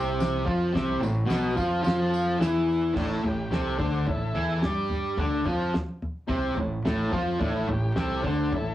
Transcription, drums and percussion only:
0.20 snare, tambourine, crash
0.47 kick
0.75 kick, snare, tambourine, crash
1.03 tambourine
1.30 snare, tambourine, crash
1.57 kick, tambourine
1.84 snare, tambourine, crash
2.14 tambourine
2.41 snare, tambourine, crash
2.71 tambourine
2.96 kick, floor tom, crash
3.25 floor tom
3.52 snare, floor tom
3.80 kick, floor tom
4.07 kick, floor tom
4.35 floor tom
4.62 snare, floor tom
4.90 floor tom
5.18 kick, floor tom
5.46 kick, floor tom
5.74 snare, floor tom
6.02 floor tom
6.29 kick, floor tom
6.57 floor tom
6.86 snare, floor tom
7.13 kick, floor tom
7.41 kick, floor tom
7.68 floor tom
7.96 snare, floor tom
8.24 kick, floor tom
8.52 kick, floor tom

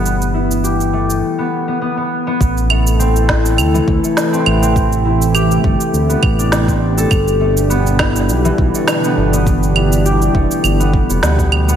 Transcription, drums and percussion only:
0.06 cabasa
0.22 cabasa
0.51 cabasa
0.65 cabasa
0.81 cabasa
1.10 cabasa
2.41 kick, cabasa
2.57 cabasa
2.70 claves
2.87 cabasa
3.00 cabasa
3.16 cabasa
3.29 kick, snare
3.46 cabasa
3.58 cabasa, claves
3.75 cabasa
3.88 kick
4.04 cabasa
4.17 snare, cabasa
4.34 cabasa
4.46 claves
4.63 cabasa
4.76 kick, cabasa
4.92 cabasa
5.22 cabasa
5.35 cabasa, claves
5.51 cabasa
5.64 kick
5.81 cabasa
5.94 cabasa
6.10 cabasa
6.23 kick, claves
6.39 cabasa
6.52 snare, cabasa
6.68 kick, cabasa
6.98 cabasa
7.11 kick, cabasa, claves
7.28 cabasa
7.57 cabasa
7.71 cabasa
7.87 cabasa
7.99 kick, snare, claves
8.16 cabasa
8.29 cabasa
8.45 cabasa
8.58 kick
8.75 cabasa
8.88 snare, cabasa, claves
9.04 cabasa
9.33 cabasa
9.47 kick, cabasa
9.63 cabasa
9.76 claves
9.93 cabasa
10.06 cabasa
10.22 cabasa
10.35 kick
10.51 cabasa
10.64 cabasa, claves
10.81 cabasa
10.93 kick
11.10 cabasa
11.23 snare, cabasa
11.39 kick, cabasa
11.52 claves
11.69 cabasa

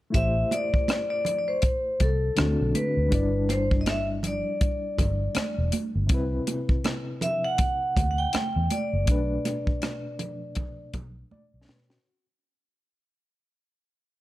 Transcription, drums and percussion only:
0.14 kick, closed hi-hat
0.51 closed hi-hat, muted conga
0.74 kick
0.88 cross-stick, closed hi-hat, high conga
1.25 closed hi-hat, low conga
1.62 kick, closed hi-hat
2.00 kick, closed hi-hat, muted conga
2.37 cross-stick, closed hi-hat, high conga
2.75 closed hi-hat, high conga
3.12 kick, closed hi-hat
3.49 cross-stick, closed hi-hat, muted conga
3.71 kick
3.86 cross-stick, closed hi-hat, high conga
4.23 closed hi-hat, low conga
4.61 kick, closed hi-hat, muted conga
4.98 kick, closed hi-hat, muted conga, low conga
5.35 cross-stick, closed hi-hat, high conga
5.72 closed hi-hat, high conga
6.09 kick, closed hi-hat
6.47 closed hi-hat, muted conga
6.69 kick
6.84 cross-stick, closed hi-hat, high conga
7.21 closed hi-hat, low conga
7.58 kick, closed hi-hat, muted conga
7.97 kick, closed hi-hat, muted conga
8.33 cross-stick, closed hi-hat, high conga
8.70 closed hi-hat, high conga
9.07 kick, closed hi-hat
9.45 cross-stick, closed hi-hat, muted conga
9.67 kick
9.82 cross-stick, closed hi-hat, high conga
10.19 closed hi-hat, low conga
10.55 kick, closed hi-hat, low conga
10.94 kick, closed hi-hat, muted conga, low conga
11.31 high conga
11.68 snare, high conga
11.90 snare

